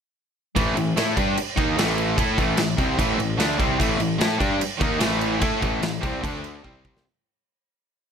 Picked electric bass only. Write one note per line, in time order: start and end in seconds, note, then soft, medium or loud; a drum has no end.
0.57 0.75 A1 medium
0.75 0.94 A1 medium
0.96 1.15 A2 medium
1.17 1.35 G2 medium
1.37 muted picked electric bass stroke soft
1.57 1.76 D#2 medium
1.78 2.15 A1 loud
2.18 2.37 A2 medium
2.38 2.57 A1 medium
2.58 2.77 A1 medium
2.78 2.97 C2 medium
2.99 3.18 A1 medium
3.19 3.38 A1 medium
3.39 3.58 D2 loud
3.60 3.79 C2 loud
3.80 3.98 A1 medium
3.99 4.18 A1 medium
4.19 4.39 A2 medium
4.41 4.59 G2 loud
4.59 muted picked electric bass stroke soft
4.81 5.00 D#2 loud
5.01 5.39 A1 loud
5.42 5.61 A2 loud
5.63 5.81 A1 medium
5.81 6.01 A1 medium
6.03 6.22 C2 loud
6.24 6.61 D2 medium
6.65 7.02 C2 loud